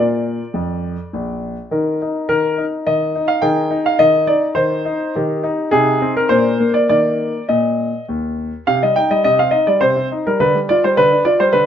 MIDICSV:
0, 0, Header, 1, 2, 480
1, 0, Start_track
1, 0, Key_signature, -3, "major"
1, 0, Tempo, 583090
1, 1412, Time_signature, 3, 2, 24, 8
1, 1888, Tempo, 570885
1, 5248, Tempo, 596421
1, 7168, Tempo, 571973
1, 9673, End_track
2, 0, Start_track
2, 0, Title_t, "Grand piano"
2, 0, Program_c, 0, 0
2, 0, Note_on_c, 0, 46, 39
2, 0, Note_on_c, 0, 65, 33
2, 0, Note_on_c, 0, 70, 34
2, 0, Note_on_c, 0, 74, 59
2, 310, Note_off_c, 0, 46, 0
2, 358, Note_off_c, 0, 65, 0
2, 359, Note_off_c, 0, 70, 0
2, 444, Note_on_c, 0, 41, 43
2, 782, Note_off_c, 0, 41, 0
2, 934, Note_on_c, 0, 34, 39
2, 1137, Note_off_c, 0, 74, 0
2, 1269, Note_off_c, 0, 34, 0
2, 1410, Note_on_c, 0, 51, 42
2, 1414, Note_on_c, 0, 63, 31
2, 1415, Note_on_c, 0, 70, 30
2, 1643, Note_off_c, 0, 51, 0
2, 1649, Note_off_c, 0, 63, 0
2, 1661, Note_on_c, 0, 63, 40
2, 1871, Note_off_c, 0, 70, 0
2, 1883, Note_on_c, 0, 51, 41
2, 1883, Note_on_c, 0, 70, 67
2, 1886, Note_off_c, 0, 63, 0
2, 2120, Note_off_c, 0, 51, 0
2, 2128, Note_on_c, 0, 63, 37
2, 2174, Note_off_c, 0, 70, 0
2, 2363, Note_off_c, 0, 63, 0
2, 2369, Note_on_c, 0, 75, 65
2, 2370, Note_on_c, 0, 51, 41
2, 2604, Note_off_c, 0, 51, 0
2, 2612, Note_on_c, 0, 63, 42
2, 2716, Note_on_c, 0, 77, 64
2, 2731, Note_off_c, 0, 75, 0
2, 2821, Note_off_c, 0, 63, 0
2, 2832, Note_on_c, 0, 79, 69
2, 2833, Note_on_c, 0, 63, 35
2, 2838, Note_on_c, 0, 51, 47
2, 2839, Note_on_c, 0, 68, 36
2, 2844, Note_off_c, 0, 77, 0
2, 3063, Note_off_c, 0, 63, 0
2, 3076, Note_on_c, 0, 63, 46
2, 3078, Note_off_c, 0, 51, 0
2, 3169, Note_off_c, 0, 79, 0
2, 3204, Note_on_c, 0, 77, 63
2, 3315, Note_on_c, 0, 75, 79
2, 3316, Note_off_c, 0, 63, 0
2, 3319, Note_on_c, 0, 51, 46
2, 3328, Note_off_c, 0, 77, 0
2, 3537, Note_off_c, 0, 75, 0
2, 3552, Note_on_c, 0, 74, 64
2, 3556, Note_off_c, 0, 51, 0
2, 3558, Note_on_c, 0, 63, 42
2, 3701, Note_off_c, 0, 74, 0
2, 3784, Note_on_c, 0, 72, 67
2, 3792, Note_on_c, 0, 51, 44
2, 3795, Note_off_c, 0, 63, 0
2, 4032, Note_off_c, 0, 51, 0
2, 4041, Note_on_c, 0, 63, 48
2, 4247, Note_off_c, 0, 68, 0
2, 4275, Note_off_c, 0, 72, 0
2, 4276, Note_off_c, 0, 63, 0
2, 4294, Note_on_c, 0, 67, 35
2, 4295, Note_on_c, 0, 63, 39
2, 4300, Note_on_c, 0, 51, 52
2, 4517, Note_off_c, 0, 63, 0
2, 4525, Note_off_c, 0, 51, 0
2, 4530, Note_on_c, 0, 63, 50
2, 4734, Note_off_c, 0, 67, 0
2, 4756, Note_off_c, 0, 63, 0
2, 4764, Note_on_c, 0, 68, 76
2, 4769, Note_on_c, 0, 63, 41
2, 4770, Note_on_c, 0, 48, 56
2, 5000, Note_off_c, 0, 48, 0
2, 5018, Note_on_c, 0, 60, 45
2, 5091, Note_off_c, 0, 68, 0
2, 5144, Note_on_c, 0, 70, 65
2, 5215, Note_off_c, 0, 63, 0
2, 5242, Note_off_c, 0, 70, 0
2, 5246, Note_off_c, 0, 60, 0
2, 5250, Note_on_c, 0, 72, 77
2, 5253, Note_on_c, 0, 62, 36
2, 5254, Note_on_c, 0, 46, 52
2, 5255, Note_on_c, 0, 70, 37
2, 5478, Note_off_c, 0, 46, 0
2, 5495, Note_on_c, 0, 58, 43
2, 5570, Note_off_c, 0, 72, 0
2, 5609, Note_on_c, 0, 74, 66
2, 5691, Note_off_c, 0, 62, 0
2, 5692, Note_off_c, 0, 70, 0
2, 5720, Note_off_c, 0, 58, 0
2, 5723, Note_off_c, 0, 74, 0
2, 5735, Note_on_c, 0, 74, 72
2, 5737, Note_on_c, 0, 51, 40
2, 5737, Note_on_c, 0, 58, 35
2, 5739, Note_on_c, 0, 70, 35
2, 6071, Note_off_c, 0, 51, 0
2, 6119, Note_off_c, 0, 58, 0
2, 6120, Note_off_c, 0, 70, 0
2, 6181, Note_off_c, 0, 74, 0
2, 6211, Note_on_c, 0, 75, 59
2, 6215, Note_on_c, 0, 46, 46
2, 6550, Note_off_c, 0, 46, 0
2, 6659, Note_off_c, 0, 75, 0
2, 6693, Note_on_c, 0, 39, 42
2, 7025, Note_off_c, 0, 39, 0
2, 7164, Note_on_c, 0, 77, 74
2, 7167, Note_on_c, 0, 48, 48
2, 7284, Note_off_c, 0, 48, 0
2, 7286, Note_off_c, 0, 77, 0
2, 7296, Note_on_c, 0, 75, 58
2, 7299, Note_on_c, 0, 55, 35
2, 7406, Note_on_c, 0, 79, 72
2, 7411, Note_on_c, 0, 63, 38
2, 7412, Note_off_c, 0, 75, 0
2, 7420, Note_off_c, 0, 55, 0
2, 7527, Note_off_c, 0, 79, 0
2, 7529, Note_on_c, 0, 55, 35
2, 7531, Note_on_c, 0, 75, 65
2, 7536, Note_off_c, 0, 63, 0
2, 7633, Note_off_c, 0, 75, 0
2, 7645, Note_on_c, 0, 75, 80
2, 7648, Note_on_c, 0, 48, 46
2, 7655, Note_off_c, 0, 55, 0
2, 7765, Note_off_c, 0, 48, 0
2, 7767, Note_off_c, 0, 75, 0
2, 7769, Note_on_c, 0, 77, 64
2, 7770, Note_on_c, 0, 60, 36
2, 7869, Note_on_c, 0, 63, 35
2, 7869, Note_on_c, 0, 75, 64
2, 7889, Note_off_c, 0, 77, 0
2, 7895, Note_off_c, 0, 60, 0
2, 7999, Note_off_c, 0, 75, 0
2, 8002, Note_on_c, 0, 74, 63
2, 8005, Note_off_c, 0, 63, 0
2, 8006, Note_on_c, 0, 55, 39
2, 8117, Note_on_c, 0, 72, 73
2, 8122, Note_on_c, 0, 48, 42
2, 8126, Note_off_c, 0, 74, 0
2, 8134, Note_off_c, 0, 55, 0
2, 8243, Note_off_c, 0, 48, 0
2, 8247, Note_on_c, 0, 60, 34
2, 8338, Note_off_c, 0, 72, 0
2, 8375, Note_off_c, 0, 60, 0
2, 8378, Note_on_c, 0, 63, 42
2, 8501, Note_off_c, 0, 63, 0
2, 8503, Note_on_c, 0, 70, 58
2, 8504, Note_on_c, 0, 55, 41
2, 8616, Note_on_c, 0, 50, 52
2, 8617, Note_off_c, 0, 70, 0
2, 8617, Note_on_c, 0, 71, 71
2, 8618, Note_off_c, 0, 55, 0
2, 8730, Note_off_c, 0, 50, 0
2, 8736, Note_on_c, 0, 55, 39
2, 8759, Note_off_c, 0, 71, 0
2, 8859, Note_on_c, 0, 74, 73
2, 8860, Note_off_c, 0, 55, 0
2, 8866, Note_on_c, 0, 65, 43
2, 8975, Note_off_c, 0, 74, 0
2, 8984, Note_off_c, 0, 65, 0
2, 8984, Note_on_c, 0, 55, 42
2, 8987, Note_on_c, 0, 72, 65
2, 9096, Note_on_c, 0, 71, 79
2, 9098, Note_off_c, 0, 72, 0
2, 9102, Note_on_c, 0, 50, 50
2, 9103, Note_off_c, 0, 55, 0
2, 9212, Note_off_c, 0, 50, 0
2, 9217, Note_on_c, 0, 62, 43
2, 9308, Note_off_c, 0, 71, 0
2, 9328, Note_on_c, 0, 74, 69
2, 9329, Note_on_c, 0, 65, 41
2, 9338, Note_off_c, 0, 62, 0
2, 9447, Note_off_c, 0, 74, 0
2, 9453, Note_on_c, 0, 55, 42
2, 9454, Note_off_c, 0, 65, 0
2, 9454, Note_on_c, 0, 72, 70
2, 9561, Note_on_c, 0, 71, 77
2, 9568, Note_on_c, 0, 50, 49
2, 9570, Note_off_c, 0, 72, 0
2, 9575, Note_off_c, 0, 55, 0
2, 9673, Note_off_c, 0, 50, 0
2, 9673, Note_off_c, 0, 71, 0
2, 9673, End_track
0, 0, End_of_file